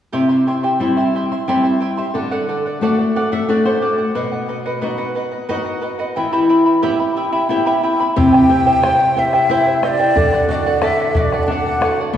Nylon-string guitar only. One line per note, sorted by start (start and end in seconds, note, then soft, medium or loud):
0.13 0.79 C3 soft
0.80 1.34 G3 soft
0.80 1.34 C4 soft
0.80 1.34 E4 soft
1.48 2.02 G3 soft
1.48 2.02 C4 soft
1.48 2.02 E4 soft
2.15 2.80 D3 medium
2.81 3.35 A3 soft
2.81 3.35 D4 soft
2.81 3.36 F#4 soft
3.16 3.32 F#5 soft
3.33 3.48 E5 medium
3.49 4.02 A3 soft
3.49 4.03 D4 soft
3.49 4.03 F#4 soft
3.49 3.65 D5 medium
3.65 4.12 C5 medium
4.15 4.80 B2 medium
4.82 5.36 B3 soft
4.82 5.36 D#4 soft
4.82 5.37 F#4 soft
5.49 6.03 B3 soft
5.49 6.03 D#4 soft
5.49 6.03 F#4 soft
6.17 6.81 E3 soft
6.83 7.36 B3 soft
6.83 7.36 E4 soft
6.83 7.37 G4 soft
7.49 8.03 B3 soft
7.49 8.03 E4 soft
7.49 8.03 G4 soft
8.16 10.12 C3 medium
8.50 8.82 G4 soft
8.84 9.16 C5 medium
9.16 9.48 G4 soft
9.49 9.82 E4 medium
9.83 10.15 G4 medium
10.16 12.11 D3 medium
10.48 10.81 F#4 medium
10.81 11.14 A4 medium
11.15 11.47 F#4 medium
11.48 11.80 D4 medium
11.81 12.13 F#4 medium
12.13 12.17 B2 medium